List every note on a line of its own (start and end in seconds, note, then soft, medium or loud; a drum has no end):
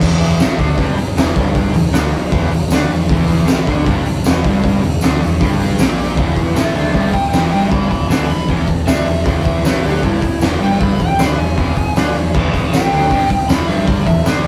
0.01 0.37 E1 loud
0.01 0.40 E2 loud
0.01 0.40 E3 loud
0.01 kick loud
0.01 crash loud
0.21 open hi-hat medium
0.39 0.58 A1 loud
0.39 0.59 A2 loud
0.39 0.59 A3 loud
0.39 snare loud
0.39 open hi-hat medium
0.39 tambourine loud
0.59 0.77 D2 loud
0.59 0.78 D3 loud
0.59 0.78 D4 loud
0.59 kick loud
0.59 open hi-hat medium
0.77 0.96 G1 loud
0.77 0.97 G2 medium
0.77 0.97 G3 loud
0.77 kick loud
0.77 open hi-hat medium
0.97 muted distorted electric guitar stroke medium
0.97 muted picked electric bass stroke soft
0.97 open hi-hat medium
1.16 1.35 E1 medium
1.16 1.35 E2 medium
1.16 1.36 E3 loud
1.16 snare loud
1.16 open hi-hat medium
1.16 tambourine medium
1.36 1.72 G1 medium
1.36 1.73 G2 loud
1.36 1.74 G3 loud
1.36 kick loud
1.36 open hi-hat medium
1.55 kick loud
1.55 open hi-hat medium
1.74 1.92 E1 medium
1.74 1.90 E2 medium
1.74 open hi-hat medium
1.92 2.12 D2 loud
1.92 2.12 D3 loud
1.92 2.12 D4 loud
1.92 snare loud
1.92 open hi-hat medium
1.92 tambourine loud
2.12 2.32 E1 medium
2.12 2.28 E2 medium
2.12 open hi-hat medium
2.32 2.50 E1 loud
2.32 2.51 E2 medium
2.32 2.51 E3 loud
2.32 kick loud
2.32 open hi-hat medium
2.51 2.70 E1 medium
2.51 2.67 E2 medium
2.51 open hi-hat medium
2.71 2.89 D2 loud
2.71 2.90 D3 medium
2.71 2.90 D4 medium
2.71 snare loud
2.71 open hi-hat medium
2.71 tambourine loud
2.90 3.08 E1 medium
2.90 3.06 E2 medium
2.90 open hi-hat medium
3.09 3.45 E1 medium
3.09 3.48 E2 loud
3.09 3.48 E3 loud
3.09 kick loud
3.09 open hi-hat medium
3.28 open hi-hat medium
3.47 3.65 A1 loud
3.47 3.67 A2 loud
3.47 3.67 A3 loud
3.47 snare loud
3.47 open hi-hat medium
3.47 tambourine loud
3.67 3.85 D2 loud
3.67 3.87 D3 loud
3.67 3.87 D4 loud
3.67 kick loud
3.67 open hi-hat medium
3.86 4.05 G1 medium
3.86 4.05 G2 loud
3.86 4.06 G3 loud
3.86 kick loud
3.86 open hi-hat medium
4.05 muted distorted electric guitar stroke medium
4.05 open hi-hat medium
4.24 4.43 E1 medium
4.24 4.44 E2 medium
4.24 4.44 E3 loud
4.24 snare loud
4.24 open hi-hat medium
4.24 tambourine loud
4.44 4.80 G1 medium
4.44 4.82 G2 medium
4.44 4.83 G3 loud
4.44 kick loud
4.44 open hi-hat medium
4.64 kick loud
4.64 open hi-hat medium
4.82 5.01 E1 medium
4.82 4.98 E2 medium
4.82 open hi-hat medium
5.01 5.20 D2 medium
5.01 5.21 D3 loud
5.01 5.21 D4 loud
5.01 snare loud
5.01 open hi-hat medium
5.01 tambourine loud
5.21 5.40 E1 medium
5.21 5.37 E2 medium
5.21 open hi-hat medium
5.40 5.77 G1 medium
5.40 5.78 G2 medium
5.40 5.79 G3 medium
5.40 kick loud
5.40 open hi-hat medium
5.60 open hi-hat medium
5.79 6.15 A#1 loud
5.79 6.17 A#2 medium
5.79 6.17 A#3 loud
5.79 snare loud
5.79 open hi-hat medium
5.79 tambourine loud
5.98 open hi-hat medium
6.17 6.54 E1 loud
6.17 6.56 E2 loud
6.17 6.56 E3 loud
6.17 kick loud
6.17 open hi-hat medium
6.36 kick medium
6.36 open hi-hat medium
6.55 6.74 A1 loud
6.55 6.75 A2 medium
6.55 6.75 A3 loud
6.55 6.72 G#4 medium
6.55 6.73 E5 medium
6.55 snare loud
6.55 open hi-hat medium
6.55 tambourine loud
6.73 6.93 D2 loud
6.73 6.94 D3 medium
6.73 6.95 D4 loud
6.73 6.92 G#4 medium
6.73 6.92 E5 medium
6.73 open hi-hat medium
6.93 7.13 G1 medium
6.93 7.13 G2 medium
6.93 7.14 G3 loud
6.93 7.13 G#4 medium
6.93 7.11 E5 medium
6.93 kick medium
6.93 open hi-hat medium
7.12 7.29 E5 medium
7.12 7.29 G5 medium
7.12 muted picked electric bass stroke soft
7.12 muted distorted electric guitar stroke medium
7.12 kick medium
7.12 open hi-hat medium
7.30 7.50 E1 loud
7.30 7.52 E2 medium
7.30 7.52 E3 medium
7.30 7.49 E5 medium
7.30 7.49 G5 medium
7.30 snare loud
7.30 open hi-hat medium
7.30 tambourine medium
7.50 7.87 G1 medium
7.50 7.91 G2 medium
7.50 7.91 G3 medium
7.50 7.69 E5 medium
7.50 7.70 G5 medium
7.50 open hi-hat medium
7.70 7.88 G#5 medium
7.70 7.89 B5 loud
7.70 kick loud
7.70 open hi-hat medium
7.89 8.08 E1 medium
7.89 8.07 E2 medium
7.89 8.08 G#5 medium
7.89 8.08 B5 medium
7.89 kick medium
7.89 open hi-hat medium
8.09 8.28 D2 medium
8.09 8.29 D3 loud
8.09 8.30 D4 loud
8.09 8.27 G#5 medium
8.09 8.26 B5 medium
8.09 snare loud
8.09 open hi-hat medium
8.09 tambourine loud
8.27 8.48 E1 medium
8.27 8.45 E2 medium
8.27 8.47 B5 loud
8.27 open hi-hat medium
8.49 8.67 E1 medium
8.49 8.68 E2 loud
8.49 8.68 E3 loud
8.49 kick medium
8.49 open hi-hat medium
8.67 8.86 E1 medium
8.67 8.84 E2 medium
8.67 kick medium
8.67 open hi-hat medium
8.87 9.04 D2 loud
8.87 9.06 D3 medium
8.87 9.07 D4 medium
8.87 9.25 E5 medium
8.87 snare loud
8.87 open hi-hat medium
8.87 tambourine loud
9.05 9.24 E1 medium
9.05 9.23 E2 medium
9.05 open hi-hat medium
9.24 9.62 E1 medium
9.24 9.64 E2 loud
9.24 9.65 E3 loud
9.24 9.44 D5 medium
9.24 kick loud
9.24 open hi-hat medium
9.44 9.63 E5 medium
9.44 kick medium
9.44 open hi-hat medium
9.64 9.82 A1 loud
9.64 9.83 A2 loud
9.64 9.84 A3 loud
9.64 9.83 B4 medium
9.64 snare loud
9.64 open hi-hat medium
9.64 tambourine loud
9.83 10.01 D2 loud
9.83 10.03 D3 loud
9.83 10.03 D4 medium
9.83 10.03 G4 medium
9.83 open hi-hat medium
10.02 10.21 G1 medium
10.02 10.22 G2 loud
10.02 10.22 G3 loud
10.02 10.41 E4 loud
10.02 kick medium
10.02 open hi-hat medium
10.22 muted picked electric bass stroke soft
10.22 muted distorted electric guitar stroke medium
10.22 kick loud
10.22 open hi-hat medium
10.41 10.59 E1 loud
10.41 10.60 E2 medium
10.41 10.61 E3 medium
10.41 snare loud
10.41 open hi-hat medium
10.41 tambourine loud
10.60 10.96 G1 loud
10.60 10.99 G2 medium
10.60 10.99 G3 loud
10.60 10.81 G5 loud
10.60 open hi-hat medium
10.81 11.00 B5 loud
10.81 kick loud
10.81 open hi-hat medium
11.00 11.18 E1 medium
11.00 11.15 E2 medium
11.00 11.19 G5 loud
11.00 kick medium
11.00 open hi-hat medium
11.19 11.37 D2 loud
11.19 11.37 D3 medium
11.19 11.38 D4 loud
11.19 11.38 B5 medium
11.19 snare loud
11.19 open hi-hat medium
11.19 tambourine loud
11.37 11.56 E1 medium
11.37 11.53 E2 medium
11.37 12.50 G#5 loud
11.37 open hi-hat medium
11.56 11.75 E1 medium
11.56 11.75 E2 medium
11.56 11.76 E3 loud
11.56 kick medium
11.56 open hi-hat medium
11.76 11.95 E1 medium
11.76 11.92 E2 medium
11.76 kick medium
11.76 open hi-hat medium
11.95 12.13 D2 medium
11.95 12.14 D3 medium
11.95 12.15 D4 loud
11.95 snare loud
11.95 open hi-hat medium
11.95 tambourine medium
12.15 12.32 E1 medium
12.15 12.31 E2 medium
12.15 open hi-hat medium
12.34 12.70 E1 medium
12.34 12.72 E2 loud
12.34 12.73 E3 loud
12.34 kick loud
12.34 crash loud
12.54 kick medium
12.54 open hi-hat medium
12.73 12.90 A1 medium
12.73 12.91 A2 medium
12.73 12.92 A3 loud
12.73 13.47 G5 loud
12.73 snare loud
12.73 open hi-hat medium
12.73 tambourine medium
12.92 13.10 D2 loud
12.92 13.10 D3 medium
12.92 13.11 D4 loud
12.92 open hi-hat medium
13.10 13.29 G1 medium
13.10 13.29 G2 medium
13.10 13.30 G3 loud
13.10 kick medium
13.10 open hi-hat medium
13.29 muted distorted electric guitar stroke medium
13.29 muted picked electric bass stroke soft
13.29 kick medium
13.29 open hi-hat medium
13.49 13.67 E1 medium
13.49 13.68 E2 medium
13.49 13.68 E3 loud
13.49 13.67 B5 medium
13.49 snare loud
13.49 open hi-hat medium
13.49 tambourine medium
13.68 14.04 G1 medium
13.68 14.06 G2 medium
13.68 14.07 G3 loud
13.68 13.87 E5 medium
13.68 open hi-hat medium
13.87 14.06 D5 loud
13.87 kick loud
13.87 open hi-hat medium
14.05 14.24 E1 medium
14.05 14.22 E2 medium
14.05 14.24 E5 loud
14.05 kick medium
14.05 open hi-hat medium
14.25 14.44 D2 loud
14.25 14.44 D3 loud
14.25 14.45 D4 loud
14.25 snare loud
14.25 open hi-hat medium
14.25 tambourine loud
14.44 open hi-hat medium